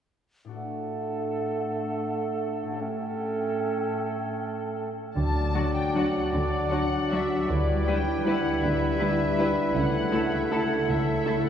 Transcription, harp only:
0.45 2.62 A2 soft
0.45 2.80 D4 soft
0.45 2.78 F#4 soft
0.51 2.75 A4 soft
2.63 5.09 A2 soft
2.67 5.11 C#4 soft
2.72 5.13 G4 soft
2.76 6.66 A4 soft
5.16 6.32 D3 soft
5.35 6.51 A3 soft
5.55 6.70 D4 soft
5.76 6.14 F#4 soft
5.95 6.28 G4 soft
6.15 6.90 F#4 soft
6.33 7.48 D3 soft
6.52 7.51 A3 soft
6.71 7.87 D4 soft
6.92 7.30 F#4 soft
7.11 7.44 G4 soft
7.31 7.51 F#4 soft
7.49 8.62 D3 soft
7.68 8.80 G3 soft
7.88 8.99 D4 soft
8.07 8.44 E4 soft
8.27 8.58 F#4 soft
8.45 9.19 E4 soft
8.64 9.77 D3 soft
8.81 9.77 G3 soft
9.00 9.77 D4 soft
9.20 9.57 E4 soft
9.39 9.71 F#4 soft
9.58 10.31 E4 soft
9.75 10.87 C#3 soft
9.93 11.05 A3 soft
10.12 11.24 C#4 soft
10.32 10.69 E4 soft
10.51 10.83 F#4 soft
10.70 11.44 E4 soft
10.88 11.49 C#3 soft
11.06 11.49 A3 soft
11.26 11.49 C#4 soft
11.45 11.49 E4 soft

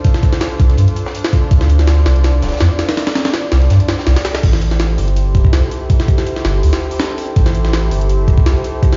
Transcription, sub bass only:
0.60 0.76 C2 loud
0.78 0.87 G2 medium
1.51 2.05 D2 loud
2.06 2.41 C2 loud
2.42 2.51 D1 loud
2.61 2.70 F2 medium
3.52 3.69 C2 medium
3.70 3.79 G2 medium
4.07 4.16 C2 loud
4.43 4.97 A1 loud
4.99 5.34 G1 loud
5.35 5.44 E1 loud
5.53 5.62 C2 medium
6.45 6.61 G1 loud
6.63 6.72 D2 medium
7.36 7.90 A1 loud
7.91 8.27 G1 loud
8.28 8.37 E1 loud
8.46 8.55 C2 loud

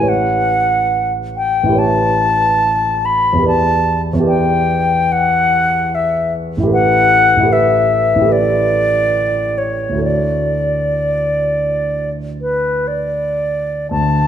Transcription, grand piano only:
0.00 1.62 A1 soft
0.00 1.65 E4 soft
0.00 1.67 G4 soft
0.00 1.71 B4 soft
0.00 1.73 C#5 soft
1.63 3.36 A1 soft
1.63 3.34 E4 soft
1.69 3.37 G4 soft
1.69 3.40 B4 soft
1.75 3.42 C#5 soft
3.33 4.12 E2 soft
3.33 4.15 E4 soft
3.39 4.18 G4 soft
3.39 4.21 B4 soft
3.45 4.25 D5 soft
4.13 6.61 E2 soft
4.13 6.59 E4 soft
4.20 6.62 G4 soft
4.20 6.65 B4 soft
4.26 6.67 D5 soft
6.57 7.35 A1 soft
6.57 7.38 E4 soft
6.63 7.42 G4 soft
6.63 7.44 A4 soft
6.70 7.47 B4 soft
7.36 8.14 A1 soft
7.36 8.17 E4 soft
7.43 8.20 G4 soft
7.43 8.23 A4 soft
7.49 8.26 B4 soft
8.15 9.93 A1 soft
8.15 9.91 E4 soft
8.21 9.96 G4 soft
8.21 9.97 A4 soft
8.28 9.99 B4 soft
9.89 13.80 D2 soft
9.89 13.82 E4 soft
9.95 13.83 F#4 soft
9.95 13.85 A4 soft
10.01 13.86 C#5 soft
13.91 14.27 D2 soft

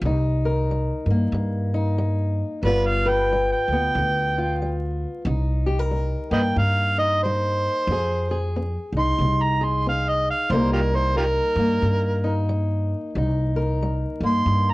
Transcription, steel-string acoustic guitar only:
0.05 0.64 C3 medium
0.05 1.73 D#4 medium
0.45 2.62 A#4 medium
0.71 1.29 G3 medium
1.10 2.65 A#3 medium
1.34 1.94 G2 medium
1.74 2.61 D#4 medium
1.99 2.59 G3 medium
2.64 3.24 G2 medium
2.64 3.30 G3 medium
2.64 3.70 B3 medium
2.64 4.36 F4 medium
3.05 5.24 B4 medium
3.32 3.91 G3 medium
3.72 5.24 B3 medium
3.98 4.57 D3 medium
4.38 5.24 F4 medium
4.61 5.21 G3 medium
5.27 5.87 C3 medium
5.27 6.97 D#4 medium
5.66 5.79 G4 medium
5.79 7.89 A#4 soft
5.91 6.52 G3 medium
6.31 7.88 A#3 medium
6.59 7.19 G2 medium
6.98 7.94 D#4 medium
7.25 7.84 G3 medium
7.91 8.50 F3 medium
7.91 8.30 G#4 medium
8.31 9.60 G#4 medium
8.56 9.16 C4 medium
8.97 10.53 D#4 medium
9.21 9.81 C3 medium
9.61 10.49 G#4 medium
9.87 10.47 C4 medium
10.52 11.12 C3 medium
10.52 11.16 G3 medium
10.52 11.58 A#3 medium
10.52 10.93 D#4 medium
10.52 13.13 A#4 medium
10.94 12.23 D#4 medium
11.16 11.77 G3 medium
11.59 14.21 A#3 medium
11.83 12.44 G2 medium
12.24 13.17 D#4 medium
12.49 13.10 G3 medium
13.16 13.76 C3 medium
13.16 14.74 D#4 medium
13.56 14.74 A#4 medium
13.83 14.42 G3 medium
14.23 14.74 A#3 medium
14.48 14.74 G2 medium

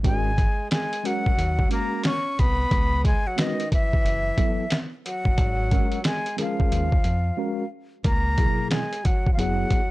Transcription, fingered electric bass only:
0.05 0.46 G#1 loud
1.38 1.63 D#2 medium
2.39 2.64 C2 medium
2.72 3.13 C#2 loud
4.04 4.30 F#1 medium
5.25 5.35 F#1 medium
5.38 5.80 G#1 loud
6.72 6.97 D#2 medium
7.05 7.30 F2 medium
8.05 8.46 C#2 loud
9.38 9.63 F#1 medium

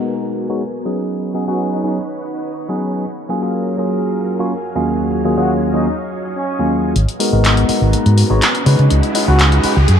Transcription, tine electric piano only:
0.00 0.46 G#3 medium
0.00 0.46 B3 medium
0.00 0.47 D#4 medium
0.00 0.47 F#4 medium
0.00 0.47 A#4 medium
0.49 0.62 G#3 medium
0.49 0.62 B3 medium
0.49 0.62 D#4 medium
0.49 0.62 F#4 medium
0.49 0.62 C#5 medium
0.85 1.32 F#3 medium
0.85 1.32 B3 medium
0.85 1.32 C#4 medium
0.85 1.32 D#4 medium
0.85 1.32 G#4 medium
1.34 1.44 F#3 medium
1.34 1.44 B3 medium
1.34 1.44 C#4 medium
1.34 1.44 D#4 medium
1.34 1.44 G#4 medium
1.47 1.81 F#3 medium
1.47 1.81 B3 medium
1.47 1.81 C#4 medium
1.47 1.81 D#4 medium
1.47 1.81 G#4 medium
1.83 1.97 F#3 medium
1.83 1.97 B3 medium
1.83 1.97 C#4 medium
1.83 1.97 D#4 medium
1.83 1.97 G#4 medium
2.69 3.04 F#3 medium
2.69 3.04 B3 medium
2.69 3.04 C#4 medium
2.69 3.04 D#4 medium
2.69 3.04 G#4 medium
3.29 3.40 F#3 medium
3.29 3.40 A#3 medium
3.29 3.41 C#4 medium
3.29 3.41 F4 medium
3.29 3.41 G#4 loud
3.42 3.75 F#3 medium
3.42 3.75 A#3 medium
3.42 3.76 C#4 medium
3.42 3.76 F4 medium
3.42 3.76 G#4 medium
3.78 4.37 F#3 medium
3.78 4.37 A#3 medium
3.78 4.37 C#4 medium
3.78 4.37 F4 medium
3.78 4.37 G#4 medium
4.39 4.52 F#3 medium
4.39 4.52 A#3 medium
4.39 4.52 C#4 medium
4.39 4.52 F4 medium
4.39 4.52 C#5 medium
4.75 5.22 D#2 medium
4.75 5.22 F#3 medium
4.75 5.22 A#3 medium
4.75 5.22 C#4 medium
4.75 5.22 F4 medium
4.75 5.22 G#4 medium
5.24 5.34 D#2 medium
5.24 5.34 F#3 medium
5.24 5.34 A#3 medium
5.24 5.35 C#4 medium
5.24 5.35 F4 medium
5.24 5.35 G#4 medium
5.37 5.71 D#2 medium
5.37 5.71 F#3 medium
5.37 5.71 A#3 medium
5.37 5.71 C#4 medium
5.37 5.71 F4 medium
5.37 5.71 G#4 medium
5.73 5.87 D#2 medium
5.73 5.87 F#3 medium
5.73 5.87 A#3 medium
5.73 5.87 C#4 medium
5.73 5.87 F4 medium
5.73 5.87 G#4 medium
6.59 6.94 D#2 medium
6.59 6.94 F#3 medium
6.59 6.94 A#3 medium
6.59 6.94 C#4 medium
6.59 6.94 F4 medium
6.59 6.94 G#4 medium
7.19 7.31 G#3 medium
7.19 7.31 B3 medium
7.19 7.31 D#4 medium
7.19 7.31 F#4 medium
7.19 7.31 A#4 loud
7.32 7.66 G#3 medium
7.32 7.66 B3 medium
7.32 7.66 D#4 medium
7.32 7.66 F#4 medium
7.32 7.66 A#4 medium
7.68 8.27 G#3 medium
7.68 8.27 B3 medium
7.68 8.27 D#4 medium
7.68 8.27 F#4 medium
7.68 8.28 A#4 medium
8.30 8.42 G#3 medium
8.30 8.42 B3 medium
8.30 8.42 D#4 medium
8.30 8.43 F#4 medium
8.30 8.43 C#5 medium
8.66 9.12 G#3 medium
8.66 9.12 C#4 medium
8.66 9.12 D#4 medium
8.66 9.12 F#4 medium
8.66 9.12 B4 loud
9.14 9.24 G#3 medium
9.14 9.25 C#4 medium
9.14 9.25 D#4 medium
9.14 9.25 F#4 medium
9.14 9.25 B4 medium
9.27 9.61 G#3 medium
9.27 9.61 C#4 medium
9.27 9.61 D#4 medium
9.27 9.61 F#4 medium
9.27 9.61 B4 medium
9.63 9.77 G#3 medium
9.63 9.77 C#4 medium
9.63 9.77 D#4 medium
9.63 9.77 F#4 medium
9.63 9.77 B4 medium

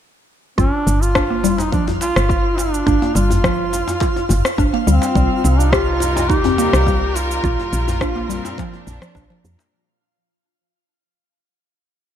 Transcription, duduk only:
0.58 1.03 D4 loud
1.02 1.61 F4 loud
1.59 1.72 D#4 medium
1.73 1.86 D4 medium
2.01 2.59 F4 loud
2.58 3.16 D4 medium
3.15 4.60 F4 loud
4.88 5.61 C4 loud
5.60 5.74 D4 medium
5.73 6.32 F4 loud
6.30 7.17 G4 loud
7.15 9.15 F4 loud

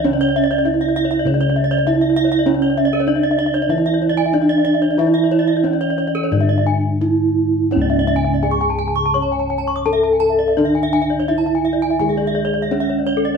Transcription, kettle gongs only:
0.00 1.24 C#2 loud
0.05 1.82 C#4 medium
0.65 0.73 D4 soft
1.25 3.04 C#3 medium
1.86 1.94 D4 soft
2.46 4.29 C#4 medium
3.07 3.15 D4 soft
3.69 5.60 E3 medium
4.33 4.41 D4 soft
4.98 6.97 E4 medium
5.64 5.72 D4 medium
6.32 8.39 G#2 medium
7.01 7.09 D4 soft
7.71 9.82 C#4 medium
7.76 11.99 C#2 loud
8.43 8.51 D4 soft
9.86 9.94 D4 soft
10.57 11.27 D4 medium
11.28 11.36 D4 soft
12.00 13.37 D3 medium
12.71 12.79 D4 soft

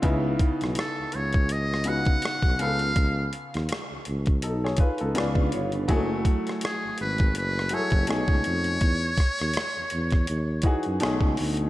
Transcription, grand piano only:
0.02 1.17 C#3 loud
0.02 1.17 B3 medium
0.02 1.18 D#4 medium
0.02 1.18 E4 loud
1.85 2.57 C#3 medium
1.85 2.58 B3 medium
1.85 2.60 D#4 medium
1.85 2.60 F#4 medium
2.59 3.77 C#3 medium
2.59 3.78 B3 medium
2.59 3.78 F4 medium
2.59 3.79 A4 medium
4.43 4.62 D#4 soft
4.43 4.62 A4 medium
4.64 4.79 G#4 medium
4.64 4.79 C#5 medium
4.80 4.99 F4 medium
4.80 4.99 B4 medium
5.00 5.35 D#4 soft
5.00 5.35 A4 medium
5.15 5.75 C#3 medium
5.15 5.76 B3 medium
5.15 5.76 F4 medium
5.15 5.77 D5 medium
5.88 7.02 F#3 loud
5.88 7.04 A3 loud
5.88 7.03 E4 medium
5.88 7.03 G#4 loud
7.71 8.08 F#3 medium
7.71 8.08 E4 medium
7.71 8.09 G#4 medium
7.71 8.10 A4 medium
8.07 8.68 B2 medium
8.07 8.68 A3 medium
8.07 8.69 C#4 medium
8.07 8.69 D#4 medium
8.07 8.70 G#4 medium
10.63 11.01 E3 medium
10.63 11.01 D#4 medium
10.63 11.02 F#4 medium
10.63 11.02 G#4 medium
11.00 11.61 B2 medium
11.00 11.61 A3 medium
11.00 11.62 C#4 medium
11.00 11.62 D#4 medium
11.00 11.63 G#4 medium

